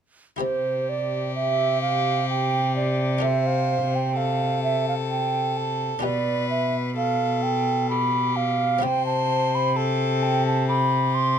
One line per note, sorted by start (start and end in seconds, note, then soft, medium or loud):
0.36 3.17 E4 soft
0.36 3.17 G4 soft
0.36 3.18 C5 soft
0.41 5.99 C3 soft
0.41 5.99 C3 medium
0.41 3.25 G4 medium
0.41 0.91 C5 medium
0.89 1.35 D5 medium
1.35 1.81 E5 medium
1.82 2.28 F5 medium
2.30 2.75 G5 medium
2.76 3.24 D5 medium
3.19 5.97 D4 soft
3.19 5.98 F4 soft
3.19 5.99 A4 soft
3.23 4.17 C5 medium
3.23 3.48 E5 medium
3.46 3.97 F5 medium
3.95 4.18 G5 medium
4.17 6.00 A4 medium
4.17 4.63 F5 medium
4.63 4.86 E5 medium
4.89 4.95 F5 medium
5.11 5.59 G5 medium
5.58 6.05 A5 medium
5.99 8.77 D4 soft
5.99 8.78 F4 soft
5.99 8.79 G4 soft
6.03 8.85 B2 medium
6.03 8.79 B2 soft
6.03 6.95 B4 medium
6.03 6.49 D5 medium
6.50 6.76 E5 medium
6.97 7.93 A4 medium
6.97 7.44 F5 medium
7.43 7.90 G5 medium
7.90 8.84 G4 medium
7.90 8.38 B5 medium
8.36 8.85 F5 medium
8.79 11.39 C4 soft
8.79 11.39 E4 soft
8.79 11.39 G4 soft
8.83 11.39 C3 medium
8.83 9.75 C5 medium
8.83 9.06 G5 medium
9.06 9.56 A5 medium
9.55 9.78 B5 medium
9.77 10.71 A4 medium
9.77 10.24 A5 medium
10.23 10.46 G5 medium
10.46 10.68 A5 medium
10.68 11.39 G4 medium
10.68 11.16 B5 loud
11.15 11.39 C6 medium